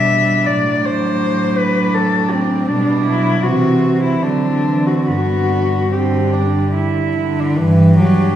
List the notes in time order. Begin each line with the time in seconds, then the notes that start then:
Already playing: B2 G3 D4 E5
0.46 A2 F#3 D5
0.85 C5
1.58 B4
1.94 A4
2.32 C4
2.68 B2 G3 D4
3.05 F#3 E4
3.43 C3 E3 C4 F#4
4.03 E4
4.23 D3 F#3 C4 D4
4.65 E3
4.86 F#4
5.07 G2 D3 B3 F#4
5.91 D3 C4 G4
6.33 D4
6.74 E4
7.17 D3
7.40 D4
7.58 G2 E3 G4
7.97 F#3 D4